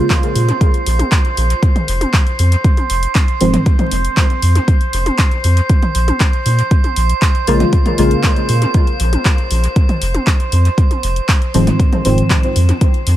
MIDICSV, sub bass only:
0, 0, Header, 1, 2, 480
1, 0, Start_track
1, 0, Tempo, 508475
1, 1536, Time_signature, 4, 2, 24, 8
1, 12430, End_track
2, 0, Start_track
2, 0, Title_t, "Sub bass"
2, 0, Program_c, 0, 38
2, 334, Note_on_c, 0, 46, 105
2, 492, Note_off_c, 0, 46, 0
2, 815, Note_on_c, 0, 34, 99
2, 973, Note_off_c, 0, 34, 0
2, 1295, Note_on_c, 0, 34, 83
2, 1453, Note_off_c, 0, 34, 0
2, 1775, Note_on_c, 0, 29, 96
2, 1932, Note_off_c, 0, 29, 0
2, 2256, Note_on_c, 0, 41, 99
2, 2413, Note_off_c, 0, 41, 0
2, 2736, Note_on_c, 0, 29, 95
2, 2893, Note_off_c, 0, 29, 0
2, 3216, Note_on_c, 0, 29, 85
2, 3373, Note_off_c, 0, 29, 0
2, 3695, Note_on_c, 0, 29, 100
2, 3853, Note_off_c, 0, 29, 0
2, 4176, Note_on_c, 0, 41, 103
2, 4333, Note_off_c, 0, 41, 0
2, 4656, Note_on_c, 0, 29, 100
2, 4813, Note_off_c, 0, 29, 0
2, 5135, Note_on_c, 0, 41, 79
2, 5293, Note_off_c, 0, 41, 0
2, 5615, Note_on_c, 0, 34, 100
2, 5773, Note_off_c, 0, 34, 0
2, 6095, Note_on_c, 0, 46, 104
2, 6253, Note_off_c, 0, 46, 0
2, 6575, Note_on_c, 0, 34, 98
2, 6733, Note_off_c, 0, 34, 0
2, 7054, Note_on_c, 0, 34, 86
2, 7212, Note_off_c, 0, 34, 0
2, 7533, Note_on_c, 0, 34, 99
2, 7692, Note_off_c, 0, 34, 0
2, 8014, Note_on_c, 0, 46, 99
2, 8172, Note_off_c, 0, 46, 0
2, 8495, Note_on_c, 0, 34, 98
2, 8652, Note_off_c, 0, 34, 0
2, 8975, Note_on_c, 0, 34, 84
2, 9132, Note_off_c, 0, 34, 0
2, 9456, Note_on_c, 0, 29, 100
2, 9613, Note_off_c, 0, 29, 0
2, 9934, Note_on_c, 0, 41, 102
2, 10092, Note_off_c, 0, 41, 0
2, 10415, Note_on_c, 0, 29, 98
2, 10573, Note_off_c, 0, 29, 0
2, 10894, Note_on_c, 0, 29, 85
2, 11052, Note_off_c, 0, 29, 0
2, 11375, Note_on_c, 0, 29, 96
2, 11532, Note_off_c, 0, 29, 0
2, 11855, Note_on_c, 0, 41, 105
2, 12012, Note_off_c, 0, 41, 0
2, 12335, Note_on_c, 0, 41, 93
2, 12430, Note_off_c, 0, 41, 0
2, 12430, End_track
0, 0, End_of_file